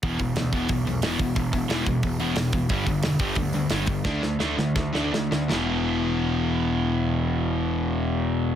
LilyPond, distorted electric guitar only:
\new Staff \with { instrumentName = "Distorted electric guitar" } { \clef bass \time 4/4 \key e \minor \tempo 4 = 173 <e, b, e>8 <e, b,>8 <e, b,>8 <e, b, e>8 <e, b,>8 <e, b,>8 <e, b, e>8 <e, b,>8 | <e, b,>8 <e, b,>8 <e, b, e>8 <e, b,>8 <e, b,>8 <e, b, e>8 <e, b,>8 <e, b,>8 | <g, d g>8 <g, d>8 <g, d>8 <g, d g>8 <g, d>8 <g, d>8 <g, d g>8 <g, d>8 | <d a d'>8 <d a>8 <d a d'>8 <d a>8 <d a>8 <d a d'>8 <d a>8 <d a>8 |
<e, b, e>1~ | <e, b, e>1 | }